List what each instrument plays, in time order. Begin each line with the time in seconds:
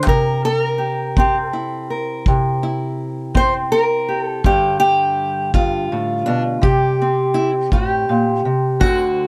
0.06 steel-string acoustic guitar C3 A#4, kick
0.45 steel-string acoustic guitar A4
0.58 steel-string acoustic guitar A#4
0.78 steel-string acoustic guitar G4
1.17 steel-string acoustic guitar C4 G4, kick
1.46 steel-string acoustic guitar A4
1.53 steel-string acoustic guitar E4
1.90 steel-string acoustic guitar A#4
2.26 steel-string acoustic guitar C3, kick
2.63 steel-string acoustic guitar E4
3.35 steel-string acoustic guitar C4 C5, kick
3.72 steel-string acoustic guitar A#4
4.09 steel-string acoustic guitar G4
4.23 steel-string acoustic guitar A4
4.44 steel-string acoustic guitar G2 D3 G3 G4, kick
4.80 steel-string acoustic guitar G4
5.54 steel-string acoustic guitar G2 F4, kick
5.92 steel-string acoustic guitar A2
6.26 steel-string acoustic guitar B2 D4
6.62 steel-string acoustic guitar C3 G4, kick
7.02 steel-string acoustic guitar C4
7.34 steel-string acoustic guitar E4
7.72 steel-string acoustic guitar A2 G4, kick
8.09 steel-string acoustic guitar A#2
8.45 steel-string acoustic guitar C3
8.80 steel-string acoustic guitar D2 D3 C4 F#4, kick